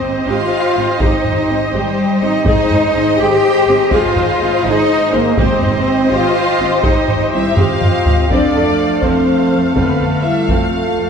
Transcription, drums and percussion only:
1.00 taiko
1.25 taiko low-mid
2.46 taiko
2.70 taiko low-mid
3.91 taiko
4.16 taiko low-mid
5.38 taiko
5.62 taiko low-mid
6.83 taiko
7.08 taiko low-mid
7.57 taiko low-mid
7.81 taiko low-mid
8.06 taiko low
8.30 taiko
9.03 taiko
9.76 taiko
10.49 taiko

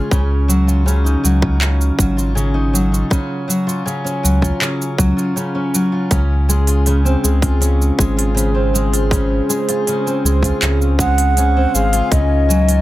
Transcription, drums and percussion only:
0.11 kick, shaker
0.50 shaker
0.69 shaker
0.88 shaker
1.06 shaker
1.25 shaker
1.42 kick
1.61 clap, shaker
1.81 shaker
1.99 kick, shaker
2.19 shaker
2.37 shaker
2.75 shaker
2.94 shaker
3.11 kick, shaker
3.50 shaker
3.69 shaker
3.88 shaker
4.07 shaker
4.25 shaker
4.42 kick, shaker
4.62 clap, shaker
4.82 shaker
4.98 kick, shaker
5.19 shaker
5.37 shaker
5.75 shaker
6.11 kick, open hi-hat, shaker
6.50 shaker
6.67 open hi-hat, shaker
6.86 open hi-hat, shaker
7.06 shaker
7.25 shaker
7.42 kick, open hi-hat, shaker
7.62 open hi-hat, shaker
7.82 shaker
7.99 kick, shaker
8.19 open hi-hat
8.37 open hi-hat, shaker
8.75 shaker
8.94 open hi-hat, shaker
9.11 kick, open hi-hat, shaker
9.50 shaker
9.69 open hi-hat, shaker
9.87 open hi-hat, shaker
10.07 shaker
10.26 shaker
10.43 kick, open hi-hat, shaker
10.62 clap, open hi-hat, shaker
10.82 shaker
10.99 kick, shaker
11.18 open hi-hat, shaker
11.37 open hi-hat, shaker
11.75 shaker
11.93 open hi-hat, shaker
12.12 kick, open hi-hat, shaker
12.50 shaker
12.69 open hi-hat, shaker

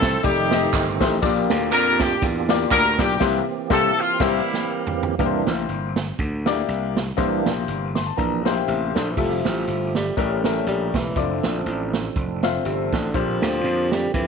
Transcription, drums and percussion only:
0.02 kick, snare, ride bell, tambourine
0.23 kick, ride bell, tambourine
0.51 snare, ride bell, tambourine
0.73 kick, clap, ride bell, tambourine
1.00 kick, snare, ride bell, tambourine
1.22 kick, ride bell, tambourine
1.50 snare, ride bell, tambourine
1.72 clap, ride bell, tambourine
2.00 kick, snare, ride bell, tambourine
2.22 kick, ride bell, tambourine
2.49 snare, ride bell, tambourine
2.71 kick, clap, ride bell, tambourine
2.99 kick, snare, ride bell, tambourine
3.21 kick, snare, crash
3.70 kick, snare
4.20 kick, snare, crash
4.54 snare
4.87 floor tom
5.03 floor tom
5.19 kick, closed hi-hat
5.47 snare, closed hi-hat
5.69 closed hi-hat
5.96 snare, closed hi-hat
6.19 kick, closed hi-hat
6.46 snare, closed hi-hat
6.69 closed hi-hat
6.97 snare, closed hi-hat
7.18 kick, closed hi-hat
7.46 snare, closed hi-hat
7.68 closed hi-hat
7.95 snare, closed hi-hat
8.18 kick, closed hi-hat
8.46 snare, closed hi-hat
8.68 closed hi-hat
8.96 snare, closed hi-hat
9.17 kick, crash
9.45 snare, closed hi-hat
9.67 closed hi-hat
9.95 snare, closed hi-hat
10.17 kick, closed hi-hat
10.44 snare, closed hi-hat
10.67 closed hi-hat
10.94 kick, snare, closed hi-hat
11.16 kick, closed hi-hat
11.43 snare, closed hi-hat
11.66 closed hi-hat
11.93 snare, closed hi-hat
12.16 kick, closed hi-hat
12.43 snare, closed hi-hat
12.65 closed hi-hat
12.93 kick, snare, closed hi-hat
13.14 kick, closed hi-hat
13.42 snare, closed hi-hat
13.64 closed hi-hat
13.92 snare, closed hi-hat
14.14 kick, closed hi-hat

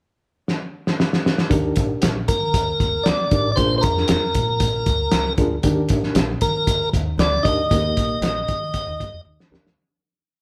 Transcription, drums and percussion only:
0.48 snare
0.87 snare
1.00 snare
1.13 snare
1.26 snare
1.38 snare
1.51 kick, closed hi-hat
1.76 kick, closed hi-hat
2.02 snare, closed hi-hat
2.28 kick, closed hi-hat
2.54 kick, closed hi-hat
2.80 kick, closed hi-hat
3.06 snare, closed hi-hat
3.31 kick, closed hi-hat
3.57 kick, closed hi-hat
3.83 kick, closed hi-hat
3.97 snare
4.08 snare, closed hi-hat
4.35 kick, closed hi-hat
4.60 kick, closed hi-hat
4.86 kick, closed hi-hat
5.12 snare, closed hi-hat
5.38 kick, closed hi-hat
5.63 kick, closed hi-hat
5.89 kick, closed hi-hat
6.03 snare
6.15 snare, closed hi-hat
6.41 kick, closed hi-hat
6.67 kick, closed hi-hat
6.94 kick, closed hi-hat
7.19 snare, closed hi-hat
7.45 kick, closed hi-hat
7.71 kick, closed hi-hat
7.97 kick, closed hi-hat
8.22 snare, closed hi-hat
8.48 kick, closed hi-hat
8.74 kick, closed hi-hat
9.00 kick, closed hi-hat
9.40 snare
9.54 snare
9.67 snare

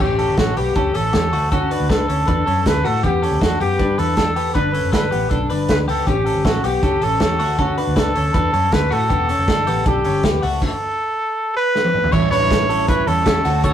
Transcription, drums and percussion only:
0.19 open hi-hat
0.37 kick, snare, closed hi-hat
0.57 open hi-hat
0.75 kick, closed hi-hat
0.95 open hi-hat
1.13 kick, snare, closed hi-hat
1.33 open hi-hat
1.52 kick, closed hi-hat
1.71 open hi-hat
1.90 kick, snare, closed hi-hat
2.09 open hi-hat
2.28 kick, closed hi-hat
2.47 open hi-hat
2.66 kick, snare, closed hi-hat
2.85 open hi-hat
3.04 kick, closed hi-hat
3.23 open hi-hat
3.41 kick, snare, closed hi-hat
3.61 open hi-hat
3.79 kick, closed hi-hat
3.99 open hi-hat
4.17 kick, snare, closed hi-hat
4.36 open hi-hat
4.55 kick, closed hi-hat
4.74 open hi-hat
4.93 kick, snare, closed hi-hat
5.12 open hi-hat
5.31 kick, closed hi-hat
5.50 open hi-hat
5.69 kick, snare, closed hi-hat
5.89 open hi-hat
6.07 kick, closed hi-hat
6.26 open hi-hat
6.45 kick, snare, closed hi-hat
6.64 open hi-hat
6.83 kick, closed hi-hat
7.02 open hi-hat
7.20 kick, snare, closed hi-hat
7.40 open hi-hat
7.59 kick, closed hi-hat
7.78 open hi-hat
7.96 kick, snare, closed hi-hat
8.15 open hi-hat
8.34 kick, closed hi-hat
8.54 open hi-hat
8.72 kick, snare, closed hi-hat
8.92 open hi-hat
9.10 kick, closed hi-hat
9.29 open hi-hat
9.48 kick, snare, closed hi-hat
9.67 open hi-hat
9.86 kick, closed hi-hat
10.04 open hi-hat
10.23 kick, snare, closed hi-hat
10.43 open hi-hat
10.62 kick, crash
11.75 snare
11.85 high tom
11.94 mid tom
12.04 floor tom
12.13 kick, crash
12.32 open hi-hat
12.51 kick, snare, closed hi-hat
12.70 open hi-hat
12.88 kick, closed hi-hat
13.07 open hi-hat
13.26 kick, snare, closed hi-hat
13.45 open hi-hat
13.64 kick, closed hi-hat

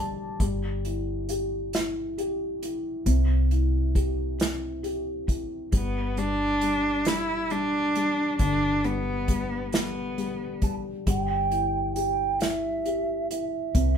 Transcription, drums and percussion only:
0.40 kick, closed hi-hat
0.85 closed hi-hat
1.29 closed hi-hat
1.73 snare, closed hi-hat
2.18 closed hi-hat
2.63 closed hi-hat
3.06 kick, closed hi-hat
3.51 closed hi-hat
3.95 kick, closed hi-hat
4.40 snare, closed hi-hat
4.84 closed hi-hat
5.28 kick, closed hi-hat
5.72 kick, closed hi-hat
6.17 closed hi-hat
6.61 closed hi-hat
7.05 snare, closed hi-hat
7.50 closed hi-hat
7.95 closed hi-hat
8.39 kick, closed hi-hat
8.84 closed hi-hat
9.28 kick, closed hi-hat
9.72 snare, closed hi-hat
10.18 closed hi-hat
10.62 kick, closed hi-hat
11.07 kick, closed hi-hat
11.51 closed hi-hat
11.96 closed hi-hat
12.40 snare, closed hi-hat
12.85 closed hi-hat
13.31 closed hi-hat
13.75 kick, closed hi-hat

